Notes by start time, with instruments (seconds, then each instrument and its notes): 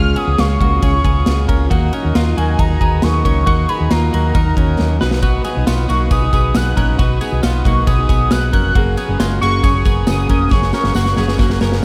Already playing: fingered electric bass C#2, clean electric guitar G#3 F4, steel-string acoustic guitar G#3 C#4 F4 G#4, transistor combo organ C#4 F4 G#4 C#5, soft synth lead F6
0.16 clean electric guitar B3 G#4, soft synth lead D#6, ride
0.26 fingered electric bass C#2, steel-string acoustic guitar C#4 F4 G#4
0.38 fingered electric bass C#2, clean electric guitar G#3 F4, soft synth lead C#6, snare, ride
0.60 fingered electric bass C#2, steel-string acoustic guitar C#3 G#3 C#4 F4 G#4, clean electric guitar A#3 F#4, kick, ride
0.83 fingered electric bass C#2, clean electric guitar C#4 G#4, soft synth lead C#6, kick, ride
0.93 steel-string acoustic guitar C#4 F4 G#4
1.04 fingered electric bass C#2, clean electric guitar B3 G#4, kick, ride
1.26 fingered electric bass C#2, steel-string acoustic guitar C#3 G#3 C#4 F4 G#4, snare, ride
1.49 fingered electric bass C#2, clean electric guitar C#4 A#4, kick, ride
1.70 fingered electric bass D#2, steel-string acoustic guitar F#3 A#3 D#4, clean electric guitar A#3 F#4, transistor combo organ D#4 F#4 A#4 D#5, kick, ride
1.74 steel-string acoustic guitar F#4
1.93 clean electric guitar C#4 A#4, ride
2.03 fingered electric bass D#2, steel-string acoustic guitar A#3 D#4 F#4
2.15 fingered electric bass D#2, clean electric guitar A#3 F4, snare, ride
2.36 fingered electric bass D#2, steel-string acoustic guitar D#3 F#3 A#3 D#4 F#4, clean electric guitar A#3 F#4, soft synth lead G#5, ride
2.59 fingered electric bass D#2, clean electric guitar D#4 G#4, soft synth lead A#5, kick, ride
2.69 steel-string acoustic guitar A#3 D#4 F#4
2.81 fingered electric bass D#2, clean electric guitar B3 G#4, kick, ride
3.02 fingered electric bass D#2, steel-string acoustic guitar D#3 F#3 A#3 D#4 F#4, soft synth lead C#6, snare, ride
3.25 fingered electric bass C#2, clean electric guitar C#4 A#4, soft synth lead C#6, kick, ride
3.45 fingered electric bass D#2, steel-string acoustic guitar F#3 A#3 D#4 F#4, clean electric guitar A#3 F#4, soft synth lead C#6, kick, ride
3.69 clean electric guitar B3 G#4, soft synth lead B5, ride
3.78 fingered electric bass D#2, steel-string acoustic guitar A#3 D#4 F#4
3.91 fingered electric bass D#2, clean electric guitar A#3 F4, soft synth lead A#5, snare, ride
4.12 fingered electric bass D#2, steel-string acoustic guitar D#3 F#3 A#3 D#4 F#4, clean electric guitar A#3 F#4, soft synth lead A#5, ride
4.35 fingered electric bass D#2, clean electric guitar D#4 A#4, kick, ride
4.45 steel-string acoustic guitar A#3 D#4 F#4
4.57 fingered electric bass D#2, clean electric guitar C#4 A#4, kick, ride
4.77 fingered electric bass D#2, steel-string acoustic guitar D#3 F#3 A#3 D#4 F#4, snare
4.99 fingered electric bass B1, steel-string acoustic guitar B2 F#3 B3 D#4 F#4, transistor combo organ D#4 F#4 B4 D#5, clean electric guitar D#4 B4, snare
5.11 snare
5.22 clean electric guitar B3 F#4, kick, ride, tambourine
5.44 clean electric guitar B3 G#4, ride, tambourine
5.55 fingered electric bass B1, steel-string acoustic guitar B3 D#4 F#4
5.67 fingered electric bass B1, clean electric guitar B3 F4, snare, ride, tambourine
5.89 fingered electric bass B1, steel-string acoustic guitar B2 F#3 B3 D#4 F#4, clean electric guitar A#3 F#4, soft synth lead C#6, ride, tambourine
6.11 fingered electric bass B1, clean electric guitar B3 G#4, soft synth lead D#6, kick, ride, tambourine
6.21 steel-string acoustic guitar B3 D#4 F#4
6.33 fingered electric bass B1, clean electric guitar B3 G#4, kick, ride, tambourine
6.55 fingered electric bass B1, steel-string acoustic guitar B2 F#3 B3 D#4 F#4, soft synth lead F#6, snare, ride, tambourine
6.77 fingered electric bass A#1, clean electric guitar C#4 A#4, soft synth lead F#6, kick, ride, tambourine
6.99 fingered electric bass B1, steel-string acoustic guitar F#3 B3 D#4 F#4, clean electric guitar B3 F#4, kick, ride, tambourine
7.21 clean electric guitar B3 G#4, ride, tambourine
7.31 fingered electric bass B1, steel-string acoustic guitar B3 D#4 F#4
7.43 fingered electric bass B1, clean electric guitar B3 F4, snare, ride, tambourine
7.65 fingered electric bass B1, steel-string acoustic guitar B2 F#3 B3 D#4 F#4, clean electric guitar A#3 F#4, soft synth lead C#6, kick, ride, tambourine
7.87 fingered electric bass B1, clean electric guitar B3 G#4, soft synth lead D#6, kick, ride, tambourine
7.98 steel-string acoustic guitar B3 D#4 F#4
8.09 fingered electric bass B1, clean electric guitar B3 G#4, kick, ride, tambourine
8.30 fingered electric bass B1, steel-string acoustic guitar B2 F#3 B3 D#4 F#4, soft synth lead F#6, snare, ride, tambourine
8.53 fingered electric bass F1, clean electric guitar C#4 A#4, soft synth lead F#6, kick, ride
8.74 fingered electric bass F#1, steel-string acoustic guitar F#3 A#3 C#4 G#4, clean electric guitar A#3 F#4, transistor combo organ F#4 G#4 A#4 C#5, kick, ride
8.97 clean electric guitar B3 G#4, ride, tambourine
9.08 fingered electric bass F#1, steel-string acoustic guitar F#3 A#3 C#4 G#4
9.20 fingered electric bass F#1, clean electric guitar G#3 F4, snare, ride, tambourine
9.40 fingered electric bass F#1, steel-string acoustic guitar F#2 C#3 F#3 A#3 C#4 G#4, clean electric guitar A#3 F#4, soft synth lead C#6, ride, tambourine
9.63 fingered electric bass F#1, clean electric guitar C#4 G#4, kick, ride, tambourine
9.74 steel-string acoustic guitar F#3 A#3 C#4 G#4
9.85 fingered electric bass F#1, clean electric guitar B3 G#4, kick, ride, tambourine
10.07 fingered electric bass F#1, steel-string acoustic guitar F#2 C#3 F#3 A#3 C#4 G#4, soft synth lead D#6, snare, ride, tambourine
10.29 fingered electric bass F1, clean electric guitar C#4 A#4, kick, ride, tambourine
10.51 fingered electric bass F#1, steel-string acoustic guitar F#3 A#3 C#4 G#4, clean electric guitar C#4 G#4, soft synth lead C#6, kick, snare, tambourine
10.62 snare
10.73 clean electric guitar C#4 A#4, snare, tambourine
10.83 fingered electric bass F#1, steel-string acoustic guitar F#3 A#3 C#4 G#4, snare
10.95 fingered electric bass F#1, clean electric guitar A#3 F#4, snare, tambourine
11.06 snare
11.17 fingered electric bass F#1, steel-string acoustic guitar F#2 C#3 F#3 A#3 C#4 G#4, clean electric guitar B3 G#4, snare, tambourine
11.28 snare
11.38 fingered electric bass F#1, clean electric guitar A#3 F#4, kick, snare, tambourine
11.49 steel-string acoustic guitar A#3 C#4 G#4, snare
11.53 steel-string acoustic guitar F#3
11.61 fingered electric bass F#1, clean electric guitar C#4 A#4, snare, tambourine
11.72 snare